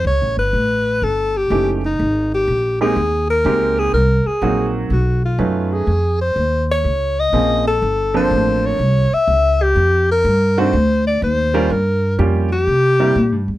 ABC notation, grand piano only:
X:1
M:4/4
L:1/8
Q:"Swing" 1/4=124
K:Cphr
V:1 name="Grand piano"
z6 [=E,=A,^C^DG] z | z3 [A,B,CEG] z2 [A,B,CEG]2 | z2 [_G,B,CE_G]2 z2 [^F,=A,^C^D=B]2 | z6 [F,B,CDA] z |
z [F,B,C=D=A]3 z4 | z3 [E,=A,C=D_G] z3 [=G,B,_DFB] | z2 [G,B,DFG] z2 [G,B,C=EB] z2 |]